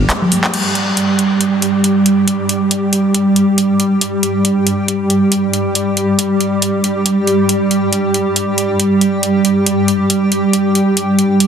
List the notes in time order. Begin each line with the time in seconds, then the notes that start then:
Already playing: G3 G4
0.01 high conga
0.10 clap, closed hi-hat
0.22 low conga
0.32 open hi-hat, high conga
0.44 clap
0.54 G3 G4, closed hi-hat, crash
0.75 closed hi-hat
0.97 closed hi-hat
1.19 closed hi-hat
1.41 closed hi-hat
1.62 closed hi-hat
1.84 closed hi-hat
2.06 closed hi-hat
2.28 closed hi-hat
2.49 closed hi-hat
2.71 closed hi-hat
2.93 closed hi-hat
3.15 closed hi-hat
3.36 closed hi-hat
3.58 closed hi-hat
3.80 closed hi-hat
4.01 closed hi-hat
4.23 closed hi-hat
4.45 closed hi-hat
4.67 closed hi-hat
4.88 closed hi-hat
5.10 closed hi-hat
5.32 closed hi-hat
5.53 closed hi-hat
5.75 closed hi-hat
5.97 closed hi-hat
6.19 closed hi-hat
6.41 closed hi-hat
6.62 closed hi-hat
6.84 closed hi-hat
7.06 closed hi-hat
7.27 closed hi-hat
7.49 closed hi-hat
7.71 closed hi-hat
7.93 closed hi-hat
8.14 closed hi-hat
8.36 closed hi-hat
8.58 closed hi-hat
8.80 closed hi-hat
9.01 closed hi-hat
9.23 closed hi-hat
9.45 closed hi-hat
9.66 closed hi-hat
9.88 closed hi-hat
10.10 closed hi-hat
10.32 closed hi-hat
10.53 closed hi-hat
10.75 closed hi-hat
10.97 closed hi-hat
11.19 closed hi-hat
11.40 closed hi-hat